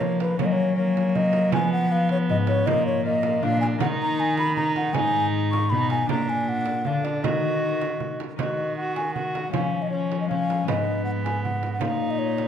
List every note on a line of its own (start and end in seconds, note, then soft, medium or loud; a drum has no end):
0.00 0.41 D#3 medium
0.00 0.39 F3 medium
0.00 0.41 F3 medium
0.00 0.38 A#3 medium
0.00 0.40 D#4 soft
0.00 0.37 A#4 soft
0.00 0.20 C#5 medium
0.00 frame drum medium
0.20 0.39 B4 medium
0.20 frame drum medium
0.37 1.55 F#3 medium
0.37 0.77 A#3 medium
0.37 0.74 C#4 soft
0.37 0.75 A#4 soft
0.37 0.47 C#5 medium
0.37 frame drum medium
0.46 0.54 D#5 medium
0.52 0.76 C#5 medium
0.75 1.54 A#3 medium
0.75 1.54 C#4 medium
0.75 1.55 A#4 medium
0.75 1.17 C#5 medium
0.97 frame drum medium
1.15 1.53 D#5 medium
1.15 frame drum soft
1.33 frame drum medium
1.49 2.67 G#3 medium
1.49 1.91 B3 medium
1.49 2.65 F4 medium
1.49 2.68 B4 medium
1.49 1.72 G#5 loud
1.49 frame drum medium
1.53 3.83 F3 medium
1.53 2.31 F3 medium
1.72 1.93 F#5 medium
1.91 2.69 B3 medium
1.91 2.11 F5 medium
2.09 2.17 C#5 loud
2.09 frame drum medium
2.29 2.69 G#2 medium
2.29 2.67 G#2 medium
2.29 2.36 D#5 loud
2.29 frame drum medium
2.47 2.68 C#5 loud
2.47 frame drum medium
2.65 3.42 A#2 medium
2.65 3.43 A#2 medium
2.65 3.02 A#3 medium
2.65 3.05 A#3 medium
2.65 3.03 F4 medium
2.65 3.04 A#4 medium
2.65 2.86 D#5 loud
2.65 frame drum medium
2.87 3.05 C#5 loud
3.03 3.39 A#3 medium
3.03 3.45 A#3 medium
3.03 3.82 F4 medium
3.03 3.41 A#4 medium
3.03 3.45 D#5 medium
3.23 frame drum medium
3.40 3.80 A#2 medium
3.40 3.76 A#3 medium
3.40 3.82 D4 medium
3.40 3.80 D4 medium
3.40 3.79 A#4 medium
3.40 3.60 F5 loud
3.40 frame drum soft
3.44 3.83 A#2 medium
3.61 3.67 G#5 loud
3.61 frame drum medium
3.78 4.97 D#3 medium
3.78 4.95 A#3 medium
3.78 4.92 D#4 medium
3.78 4.53 D#4 medium
3.78 4.96 A#4 medium
3.78 3.87 F#5 loud
3.78 frame drum medium
4.02 4.21 A#5 loud
4.20 4.38 G#5 loud
4.37 4.55 B5 loud
4.37 frame drum medium
4.56 4.94 D#4 medium
4.56 4.75 A#5 loud
4.56 frame drum medium
4.76 4.95 F#5 loud
4.76 frame drum medium
4.92 5.74 G#2 medium
4.92 6.09 G#3 medium
4.92 6.10 D#4 medium
4.92 5.70 D#4 medium
4.92 6.11 B4 medium
4.92 5.25 G#5 loud
4.92 frame drum medium
4.96 6.11 G#2 medium
5.51 5.71 C#6 loud
5.51 frame drum medium
5.70 6.11 B2 medium
5.70 6.10 B2 medium
5.70 6.09 D#4 medium
5.70 5.90 B5 medium
5.70 frame drum medium
5.90 6.09 G#5 medium
5.90 frame drum medium
6.08 7.26 A#2 medium
6.08 6.88 A#2 medium
6.08 7.25 D4 medium
6.08 6.85 D4 medium
6.08 7.22 A#4 medium
6.08 6.31 A#5 medium
6.08 frame drum medium
6.29 6.50 G#5 medium
6.49 6.88 F#5 medium
6.66 frame drum medium
6.85 7.26 D3 medium
6.85 7.26 D4 medium
6.85 7.06 F5 medium
6.85 frame drum soft
7.04 7.23 D5 medium
7.04 frame drum medium
7.22 8.37 D#3 medium
7.22 8.21 D#3 medium
7.22 8.35 D#4 soft
7.22 8.21 F#4 medium
7.22 8.36 A#4 soft
7.22 8.18 D#5 medium
7.22 frame drum medium
7.81 frame drum medium
8.00 frame drum soft
8.20 frame drum medium
8.36 9.55 D#3 soft
8.36 9.50 D#3 medium
8.36 9.54 D#4 soft
8.36 8.75 F#4 medium
8.36 9.55 A#4 soft
8.36 8.75 D#5 medium
8.36 frame drum medium
8.77 9.14 F#4 medium
8.77 8.95 F#5 medium
8.96 9.13 G#5 medium
8.96 frame drum soft
9.14 9.53 F#4 medium
9.14 9.42 F#5 medium
9.14 frame drum soft
9.35 frame drum soft
9.42 9.51 F#5 medium
9.49 10.69 F3 medium
9.49 10.25 G#3 soft
9.49 10.27 C#4 soft
9.49 10.28 C#5 soft
9.49 9.84 F5 medium
9.53 10.66 F3 medium
9.53 9.91 C#4 medium
9.53 frame drum medium
9.82 9.90 D#5 medium
9.90 10.29 C#4 medium
9.90 10.19 C#5 medium
10.12 frame drum medium
10.20 10.28 D#5 medium
10.26 10.63 G#3 soft
10.26 10.69 C#4 soft
10.26 10.69 C#5 soft
10.26 10.67 F5 medium
10.30 10.69 C#4 medium
10.30 frame drum soft
10.50 frame drum medium
10.64 11.81 G#3 soft
10.64 11.78 D#4 soft
10.64 11.83 B4 soft
10.68 11.83 G#2 soft
10.68 11.83 G#2 medium
10.68 11.81 B3 medium
10.68 11.04 D#5 medium
10.68 frame drum medium
11.05 11.11 F#5 medium
11.24 11.43 G#5 medium
11.24 frame drum medium
11.44 11.72 F#5 medium
11.44 frame drum soft
11.63 frame drum soft
11.73 11.83 F#5 medium
11.79 12.48 A#2 medium
11.79 12.48 D#4 soft
11.79 12.48 D#4 medium
11.79 12.48 A#4 medium
11.79 12.12 F5 medium
11.79 frame drum medium
12.10 12.20 D#5 medium
12.19 12.48 C#5 medium
12.38 frame drum medium